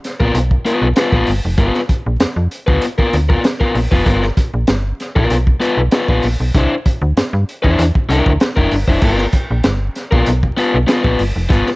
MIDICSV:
0, 0, Header, 1, 4, 480
1, 0, Start_track
1, 0, Tempo, 620347
1, 1224, Time_signature, 4, 2, 24, 8
1, 9098, End_track
2, 0, Start_track
2, 0, Title_t, "Overdriven electric guitar"
2, 0, Program_c, 0, 29
2, 154, Note_on_c, 0, 70, 91
2, 163, Note_on_c, 0, 65, 79
2, 168, Note_on_c, 0, 59, 77
2, 279, Note_off_c, 0, 70, 0
2, 284, Note_off_c, 0, 65, 0
2, 286, Note_off_c, 0, 59, 0
2, 503, Note_on_c, 0, 59, 89
2, 510, Note_on_c, 0, 65, 89
2, 515, Note_on_c, 0, 71, 95
2, 664, Note_off_c, 0, 59, 0
2, 668, Note_off_c, 0, 65, 0
2, 670, Note_off_c, 0, 71, 0
2, 747, Note_on_c, 0, 59, 62
2, 753, Note_on_c, 0, 65, 80
2, 759, Note_on_c, 0, 71, 76
2, 856, Note_off_c, 0, 59, 0
2, 859, Note_off_c, 0, 65, 0
2, 862, Note_off_c, 0, 71, 0
2, 874, Note_on_c, 0, 71, 101
2, 877, Note_on_c, 0, 65, 95
2, 889, Note_on_c, 0, 59, 80
2, 999, Note_off_c, 0, 71, 0
2, 1001, Note_off_c, 0, 65, 0
2, 1007, Note_off_c, 0, 59, 0
2, 1221, Note_on_c, 0, 59, 98
2, 1228, Note_on_c, 0, 65, 91
2, 1235, Note_on_c, 0, 71, 95
2, 1383, Note_off_c, 0, 59, 0
2, 1387, Note_off_c, 0, 65, 0
2, 1390, Note_off_c, 0, 71, 0
2, 2063, Note_on_c, 0, 71, 83
2, 2072, Note_on_c, 0, 65, 76
2, 2075, Note_on_c, 0, 59, 65
2, 2193, Note_off_c, 0, 71, 0
2, 2198, Note_off_c, 0, 65, 0
2, 2199, Note_off_c, 0, 59, 0
2, 2305, Note_on_c, 0, 70, 84
2, 2315, Note_on_c, 0, 65, 63
2, 2316, Note_on_c, 0, 59, 58
2, 2435, Note_off_c, 0, 70, 0
2, 2440, Note_off_c, 0, 59, 0
2, 2440, Note_off_c, 0, 65, 0
2, 2544, Note_on_c, 0, 70, 70
2, 2553, Note_on_c, 0, 65, 63
2, 2560, Note_on_c, 0, 59, 58
2, 2646, Note_off_c, 0, 70, 0
2, 2650, Note_off_c, 0, 65, 0
2, 2653, Note_off_c, 0, 59, 0
2, 2784, Note_on_c, 0, 70, 84
2, 2791, Note_on_c, 0, 65, 87
2, 2798, Note_on_c, 0, 59, 76
2, 2914, Note_off_c, 0, 70, 0
2, 2918, Note_off_c, 0, 65, 0
2, 2921, Note_off_c, 0, 59, 0
2, 3027, Note_on_c, 0, 71, 62
2, 3036, Note_on_c, 0, 65, 56
2, 3040, Note_on_c, 0, 59, 48
2, 3125, Note_off_c, 0, 59, 0
2, 3127, Note_off_c, 0, 71, 0
2, 3132, Note_off_c, 0, 65, 0
2, 3135, Note_on_c, 0, 59, 97
2, 3143, Note_on_c, 0, 65, 97
2, 3148, Note_on_c, 0, 70, 99
2, 3279, Note_off_c, 0, 59, 0
2, 3283, Note_off_c, 0, 65, 0
2, 3285, Note_off_c, 0, 70, 0
2, 3988, Note_on_c, 0, 70, 87
2, 3992, Note_on_c, 0, 65, 81
2, 3998, Note_on_c, 0, 59, 70
2, 4140, Note_off_c, 0, 70, 0
2, 4142, Note_off_c, 0, 65, 0
2, 4145, Note_off_c, 0, 59, 0
2, 4333, Note_on_c, 0, 59, 94
2, 4341, Note_on_c, 0, 65, 103
2, 4347, Note_on_c, 0, 71, 95
2, 4478, Note_off_c, 0, 59, 0
2, 4482, Note_off_c, 0, 65, 0
2, 4485, Note_off_c, 0, 71, 0
2, 4584, Note_on_c, 0, 59, 64
2, 4592, Note_on_c, 0, 65, 65
2, 4598, Note_on_c, 0, 71, 75
2, 4694, Note_off_c, 0, 59, 0
2, 4698, Note_off_c, 0, 65, 0
2, 4701, Note_off_c, 0, 71, 0
2, 4713, Note_on_c, 0, 71, 79
2, 4719, Note_on_c, 0, 65, 74
2, 4726, Note_on_c, 0, 59, 69
2, 4839, Note_off_c, 0, 71, 0
2, 4841, Note_off_c, 0, 65, 0
2, 4845, Note_off_c, 0, 59, 0
2, 5068, Note_on_c, 0, 62, 80
2, 5074, Note_on_c, 0, 64, 74
2, 5084, Note_on_c, 0, 72, 89
2, 5205, Note_off_c, 0, 62, 0
2, 5208, Note_off_c, 0, 64, 0
2, 5213, Note_off_c, 0, 72, 0
2, 5899, Note_on_c, 0, 72, 77
2, 5908, Note_on_c, 0, 64, 72
2, 5918, Note_on_c, 0, 62, 67
2, 6055, Note_off_c, 0, 72, 0
2, 6060, Note_off_c, 0, 64, 0
2, 6065, Note_off_c, 0, 62, 0
2, 6260, Note_on_c, 0, 62, 95
2, 6270, Note_on_c, 0, 64, 94
2, 6275, Note_on_c, 0, 70, 108
2, 6422, Note_off_c, 0, 62, 0
2, 6427, Note_off_c, 0, 64, 0
2, 6430, Note_off_c, 0, 70, 0
2, 6624, Note_on_c, 0, 70, 90
2, 6633, Note_on_c, 0, 64, 76
2, 6641, Note_on_c, 0, 62, 70
2, 6754, Note_off_c, 0, 70, 0
2, 6758, Note_off_c, 0, 64, 0
2, 6762, Note_off_c, 0, 62, 0
2, 6869, Note_on_c, 0, 72, 56
2, 6878, Note_on_c, 0, 64, 56
2, 6886, Note_on_c, 0, 62, 51
2, 6968, Note_off_c, 0, 72, 0
2, 6972, Note_off_c, 0, 64, 0
2, 6976, Note_off_c, 0, 62, 0
2, 6983, Note_on_c, 0, 59, 86
2, 6993, Note_on_c, 0, 65, 81
2, 6998, Note_on_c, 0, 70, 94
2, 7144, Note_off_c, 0, 59, 0
2, 7149, Note_off_c, 0, 65, 0
2, 7151, Note_off_c, 0, 70, 0
2, 7823, Note_on_c, 0, 70, 86
2, 7834, Note_on_c, 0, 65, 85
2, 7836, Note_on_c, 0, 59, 76
2, 7953, Note_off_c, 0, 70, 0
2, 7959, Note_off_c, 0, 65, 0
2, 7960, Note_off_c, 0, 59, 0
2, 8178, Note_on_c, 0, 59, 104
2, 8187, Note_on_c, 0, 65, 101
2, 8191, Note_on_c, 0, 71, 113
2, 8320, Note_off_c, 0, 59, 0
2, 8325, Note_off_c, 0, 65, 0
2, 8326, Note_off_c, 0, 71, 0
2, 8409, Note_on_c, 0, 59, 64
2, 8418, Note_on_c, 0, 65, 70
2, 8425, Note_on_c, 0, 71, 68
2, 8526, Note_off_c, 0, 59, 0
2, 8529, Note_off_c, 0, 71, 0
2, 8530, Note_off_c, 0, 65, 0
2, 8538, Note_on_c, 0, 71, 87
2, 8545, Note_on_c, 0, 65, 79
2, 8552, Note_on_c, 0, 59, 74
2, 8671, Note_off_c, 0, 71, 0
2, 8674, Note_off_c, 0, 65, 0
2, 8677, Note_off_c, 0, 59, 0
2, 8892, Note_on_c, 0, 59, 92
2, 8896, Note_on_c, 0, 65, 95
2, 8901, Note_on_c, 0, 71, 101
2, 9037, Note_off_c, 0, 59, 0
2, 9039, Note_off_c, 0, 65, 0
2, 9041, Note_off_c, 0, 71, 0
2, 9098, End_track
3, 0, Start_track
3, 0, Title_t, "FM bass"
3, 0, Program_c, 1, 39
3, 159, Note_on_c, 1, 34, 87
3, 246, Note_off_c, 1, 34, 0
3, 264, Note_on_c, 1, 35, 101
3, 455, Note_off_c, 1, 35, 0
3, 633, Note_on_c, 1, 35, 101
3, 722, Note_off_c, 1, 35, 0
3, 870, Note_on_c, 1, 34, 81
3, 960, Note_off_c, 1, 34, 0
3, 989, Note_on_c, 1, 31, 87
3, 1088, Note_off_c, 1, 31, 0
3, 1121, Note_on_c, 1, 29, 90
3, 1207, Note_off_c, 1, 29, 0
3, 1223, Note_on_c, 1, 31, 99
3, 1325, Note_off_c, 1, 31, 0
3, 1598, Note_on_c, 1, 34, 92
3, 1685, Note_off_c, 1, 34, 0
3, 1829, Note_on_c, 1, 41, 88
3, 1920, Note_off_c, 1, 41, 0
3, 2074, Note_on_c, 1, 38, 89
3, 2163, Note_off_c, 1, 38, 0
3, 2425, Note_on_c, 1, 38, 84
3, 2615, Note_off_c, 1, 38, 0
3, 2901, Note_on_c, 1, 34, 94
3, 3004, Note_off_c, 1, 34, 0
3, 3033, Note_on_c, 1, 29, 88
3, 3122, Note_off_c, 1, 29, 0
3, 3147, Note_on_c, 1, 31, 115
3, 3336, Note_off_c, 1, 31, 0
3, 3511, Note_on_c, 1, 34, 90
3, 3601, Note_off_c, 1, 34, 0
3, 3622, Note_on_c, 1, 31, 92
3, 3814, Note_off_c, 1, 31, 0
3, 3995, Note_on_c, 1, 34, 99
3, 4083, Note_off_c, 1, 34, 0
3, 4103, Note_on_c, 1, 35, 97
3, 4294, Note_off_c, 1, 35, 0
3, 4468, Note_on_c, 1, 35, 97
3, 4559, Note_off_c, 1, 35, 0
3, 4711, Note_on_c, 1, 34, 87
3, 4801, Note_off_c, 1, 34, 0
3, 4827, Note_on_c, 1, 34, 81
3, 4927, Note_off_c, 1, 34, 0
3, 4953, Note_on_c, 1, 35, 86
3, 5042, Note_off_c, 1, 35, 0
3, 5066, Note_on_c, 1, 36, 90
3, 5166, Note_off_c, 1, 36, 0
3, 5428, Note_on_c, 1, 38, 95
3, 5519, Note_off_c, 1, 38, 0
3, 5545, Note_on_c, 1, 43, 47
3, 5596, Note_off_c, 1, 43, 0
3, 5673, Note_on_c, 1, 43, 93
3, 5762, Note_off_c, 1, 43, 0
3, 5917, Note_on_c, 1, 40, 92
3, 6004, Note_off_c, 1, 40, 0
3, 6025, Note_on_c, 1, 40, 99
3, 6126, Note_off_c, 1, 40, 0
3, 6258, Note_on_c, 1, 36, 92
3, 6361, Note_off_c, 1, 36, 0
3, 6395, Note_on_c, 1, 38, 98
3, 6483, Note_off_c, 1, 38, 0
3, 6632, Note_on_c, 1, 29, 92
3, 6721, Note_off_c, 1, 29, 0
3, 6746, Note_on_c, 1, 31, 81
3, 6846, Note_off_c, 1, 31, 0
3, 6871, Note_on_c, 1, 29, 86
3, 6960, Note_off_c, 1, 29, 0
3, 6982, Note_on_c, 1, 31, 97
3, 7173, Note_off_c, 1, 31, 0
3, 7356, Note_on_c, 1, 34, 94
3, 7443, Note_off_c, 1, 34, 0
3, 7464, Note_on_c, 1, 31, 105
3, 7654, Note_off_c, 1, 31, 0
3, 7835, Note_on_c, 1, 34, 91
3, 7923, Note_off_c, 1, 34, 0
3, 7947, Note_on_c, 1, 35, 102
3, 8136, Note_off_c, 1, 35, 0
3, 8312, Note_on_c, 1, 35, 100
3, 8401, Note_off_c, 1, 35, 0
3, 8547, Note_on_c, 1, 34, 84
3, 8638, Note_off_c, 1, 34, 0
3, 8663, Note_on_c, 1, 31, 89
3, 8764, Note_off_c, 1, 31, 0
3, 8790, Note_on_c, 1, 29, 86
3, 8880, Note_off_c, 1, 29, 0
3, 8901, Note_on_c, 1, 31, 102
3, 9003, Note_off_c, 1, 31, 0
3, 9098, End_track
4, 0, Start_track
4, 0, Title_t, "Drums"
4, 32, Note_on_c, 9, 42, 64
4, 38, Note_on_c, 9, 38, 35
4, 110, Note_off_c, 9, 42, 0
4, 115, Note_off_c, 9, 38, 0
4, 158, Note_on_c, 9, 36, 98
4, 235, Note_off_c, 9, 36, 0
4, 269, Note_on_c, 9, 42, 91
4, 346, Note_off_c, 9, 42, 0
4, 395, Note_on_c, 9, 36, 81
4, 472, Note_off_c, 9, 36, 0
4, 510, Note_on_c, 9, 42, 81
4, 587, Note_off_c, 9, 42, 0
4, 741, Note_on_c, 9, 42, 87
4, 748, Note_on_c, 9, 38, 109
4, 818, Note_off_c, 9, 42, 0
4, 826, Note_off_c, 9, 38, 0
4, 869, Note_on_c, 9, 36, 103
4, 946, Note_off_c, 9, 36, 0
4, 979, Note_on_c, 9, 46, 84
4, 1056, Note_off_c, 9, 46, 0
4, 1218, Note_on_c, 9, 42, 77
4, 1221, Note_on_c, 9, 36, 123
4, 1296, Note_off_c, 9, 42, 0
4, 1299, Note_off_c, 9, 36, 0
4, 1348, Note_on_c, 9, 38, 38
4, 1425, Note_off_c, 9, 38, 0
4, 1463, Note_on_c, 9, 42, 72
4, 1464, Note_on_c, 9, 36, 88
4, 1540, Note_off_c, 9, 42, 0
4, 1542, Note_off_c, 9, 36, 0
4, 1702, Note_on_c, 9, 42, 94
4, 1707, Note_on_c, 9, 38, 113
4, 1780, Note_off_c, 9, 42, 0
4, 1784, Note_off_c, 9, 38, 0
4, 1944, Note_on_c, 9, 42, 68
4, 2021, Note_off_c, 9, 42, 0
4, 2073, Note_on_c, 9, 36, 102
4, 2150, Note_off_c, 9, 36, 0
4, 2178, Note_on_c, 9, 42, 89
4, 2256, Note_off_c, 9, 42, 0
4, 2310, Note_on_c, 9, 36, 85
4, 2387, Note_off_c, 9, 36, 0
4, 2423, Note_on_c, 9, 42, 79
4, 2500, Note_off_c, 9, 42, 0
4, 2551, Note_on_c, 9, 36, 98
4, 2629, Note_off_c, 9, 36, 0
4, 2661, Note_on_c, 9, 42, 87
4, 2669, Note_on_c, 9, 38, 118
4, 2739, Note_off_c, 9, 42, 0
4, 2746, Note_off_c, 9, 38, 0
4, 2790, Note_on_c, 9, 36, 99
4, 2868, Note_off_c, 9, 36, 0
4, 2903, Note_on_c, 9, 46, 85
4, 2981, Note_off_c, 9, 46, 0
4, 3031, Note_on_c, 9, 36, 96
4, 3108, Note_off_c, 9, 36, 0
4, 3142, Note_on_c, 9, 42, 83
4, 3144, Note_on_c, 9, 36, 107
4, 3220, Note_off_c, 9, 42, 0
4, 3221, Note_off_c, 9, 36, 0
4, 3268, Note_on_c, 9, 38, 36
4, 3346, Note_off_c, 9, 38, 0
4, 3382, Note_on_c, 9, 42, 77
4, 3383, Note_on_c, 9, 36, 96
4, 3459, Note_off_c, 9, 42, 0
4, 3460, Note_off_c, 9, 36, 0
4, 3615, Note_on_c, 9, 42, 91
4, 3619, Note_on_c, 9, 38, 116
4, 3692, Note_off_c, 9, 42, 0
4, 3697, Note_off_c, 9, 38, 0
4, 3867, Note_on_c, 9, 42, 63
4, 3873, Note_on_c, 9, 38, 34
4, 3945, Note_off_c, 9, 42, 0
4, 3950, Note_off_c, 9, 38, 0
4, 3993, Note_on_c, 9, 36, 107
4, 4070, Note_off_c, 9, 36, 0
4, 4102, Note_on_c, 9, 42, 93
4, 4180, Note_off_c, 9, 42, 0
4, 4232, Note_on_c, 9, 36, 77
4, 4309, Note_off_c, 9, 36, 0
4, 4344, Note_on_c, 9, 42, 78
4, 4421, Note_off_c, 9, 42, 0
4, 4576, Note_on_c, 9, 42, 87
4, 4584, Note_on_c, 9, 38, 115
4, 4653, Note_off_c, 9, 42, 0
4, 4661, Note_off_c, 9, 38, 0
4, 4708, Note_on_c, 9, 36, 101
4, 4786, Note_off_c, 9, 36, 0
4, 4816, Note_on_c, 9, 46, 91
4, 4893, Note_off_c, 9, 46, 0
4, 5062, Note_on_c, 9, 42, 83
4, 5064, Note_on_c, 9, 36, 116
4, 5140, Note_off_c, 9, 42, 0
4, 5141, Note_off_c, 9, 36, 0
4, 5305, Note_on_c, 9, 42, 72
4, 5306, Note_on_c, 9, 36, 90
4, 5382, Note_off_c, 9, 42, 0
4, 5384, Note_off_c, 9, 36, 0
4, 5547, Note_on_c, 9, 42, 81
4, 5552, Note_on_c, 9, 38, 112
4, 5625, Note_off_c, 9, 42, 0
4, 5629, Note_off_c, 9, 38, 0
4, 5794, Note_on_c, 9, 42, 64
4, 5871, Note_off_c, 9, 42, 0
4, 5914, Note_on_c, 9, 36, 90
4, 5992, Note_off_c, 9, 36, 0
4, 6026, Note_on_c, 9, 42, 96
4, 6103, Note_off_c, 9, 42, 0
4, 6154, Note_on_c, 9, 36, 83
4, 6231, Note_off_c, 9, 36, 0
4, 6268, Note_on_c, 9, 42, 78
4, 6345, Note_off_c, 9, 42, 0
4, 6392, Note_on_c, 9, 36, 98
4, 6470, Note_off_c, 9, 36, 0
4, 6500, Note_on_c, 9, 42, 75
4, 6508, Note_on_c, 9, 38, 115
4, 6578, Note_off_c, 9, 42, 0
4, 6585, Note_off_c, 9, 38, 0
4, 6629, Note_on_c, 9, 36, 97
4, 6706, Note_off_c, 9, 36, 0
4, 6741, Note_on_c, 9, 46, 92
4, 6818, Note_off_c, 9, 46, 0
4, 6868, Note_on_c, 9, 36, 92
4, 6945, Note_off_c, 9, 36, 0
4, 6975, Note_on_c, 9, 49, 88
4, 6980, Note_on_c, 9, 36, 110
4, 7052, Note_off_c, 9, 49, 0
4, 7058, Note_off_c, 9, 36, 0
4, 7103, Note_on_c, 9, 38, 37
4, 7180, Note_off_c, 9, 38, 0
4, 7216, Note_on_c, 9, 42, 83
4, 7220, Note_on_c, 9, 36, 94
4, 7294, Note_off_c, 9, 42, 0
4, 7298, Note_off_c, 9, 36, 0
4, 7456, Note_on_c, 9, 42, 85
4, 7460, Note_on_c, 9, 38, 118
4, 7533, Note_off_c, 9, 42, 0
4, 7537, Note_off_c, 9, 38, 0
4, 7702, Note_on_c, 9, 42, 65
4, 7708, Note_on_c, 9, 38, 34
4, 7780, Note_off_c, 9, 42, 0
4, 7785, Note_off_c, 9, 38, 0
4, 7832, Note_on_c, 9, 36, 104
4, 7909, Note_off_c, 9, 36, 0
4, 7939, Note_on_c, 9, 42, 88
4, 8017, Note_off_c, 9, 42, 0
4, 8070, Note_on_c, 9, 36, 81
4, 8147, Note_off_c, 9, 36, 0
4, 8184, Note_on_c, 9, 42, 79
4, 8261, Note_off_c, 9, 42, 0
4, 8418, Note_on_c, 9, 42, 89
4, 8425, Note_on_c, 9, 38, 113
4, 8495, Note_off_c, 9, 42, 0
4, 8503, Note_off_c, 9, 38, 0
4, 8546, Note_on_c, 9, 36, 99
4, 8623, Note_off_c, 9, 36, 0
4, 8658, Note_on_c, 9, 46, 96
4, 8736, Note_off_c, 9, 46, 0
4, 8901, Note_on_c, 9, 36, 123
4, 8903, Note_on_c, 9, 42, 84
4, 8978, Note_off_c, 9, 36, 0
4, 8980, Note_off_c, 9, 42, 0
4, 9024, Note_on_c, 9, 38, 39
4, 9098, Note_off_c, 9, 38, 0
4, 9098, End_track
0, 0, End_of_file